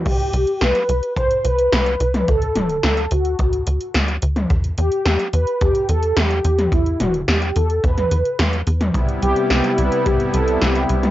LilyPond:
<<
  \new Staff \with { instrumentName = "Analog polysynth" } { \time 4/4 \key c \lydian \tempo 4 = 108 g'4 b'4 c''8 b'4. | a'4 a'8 fis'4 r4. | r8 g'4 b'8 g'8 a'8 g'4 | e'8 fis'8 g'8 a'8 b'4. r8 |
r8 g'4 b'8 g'8 a'8 g'4 | }
  \new Staff \with { instrumentName = "Supersaw synth" } { \time 4/4 \key c \lydian r1 | r1 | r1 | r1 |
<c g b e'>1 | }
  \new Staff \with { instrumentName = "Analog synth bass" } { \clef bass \time 4/4 \key c \lydian c,8 c,8 c,8 c,8 c,8 c,8 c,8 c,8 | d,8 d,,8 d,8 d,8 d,8 d,8 d,8 d,8 | e,8 e,8 e,8 e,8 e,8 e,8 e,8 e,8 | e,8 e,,8 e,8 e,8 e,8 e,8 e,8 e,8 |
c,8 c,8 c,8 c,8 c,8 c,8 c,8 c,8 | }
  \new DrumStaff \with { instrumentName = "Drums" } \drummode { \time 4/4 <cymc hh bd>16 hh16 hh16 hh16 <hh sn>16 hh16 hh16 hh16 <hh bd>16 hh16 hh16 hh16 <hh sn>16 hh16 hh16 <hh toml>16 | <hh bd>16 hh16 <hh toml>16 hh16 <hh sn>16 hh16 hh16 hh16 <hh bd>16 hh16 hh16 hh16 <hh sn>16 hh16 hh16 <hh toml>16 | <hh bd>16 hh16 hh16 hh16 <hh sn>16 hh16 hh16 hh16 <hh bd>16 hh16 hh16 hh16 <hh sn>16 hh16 hh16 <hh toml>16 | <hh bd>16 hh16 <hh toml>16 hh16 <hh sn>16 hh16 hh16 hh16 <hh bd>16 <hh toml>16 hh16 hh16 <hh sn>16 hh16 hh16 <hh toml>16 |
<hh bd>16 hh16 hh16 hh16 <hh sn>16 hh16 hh16 hh16 <hh bd>16 hh16 hh16 hh16 <hh sn>16 hh16 hh16 <hh toml>16 | }
>>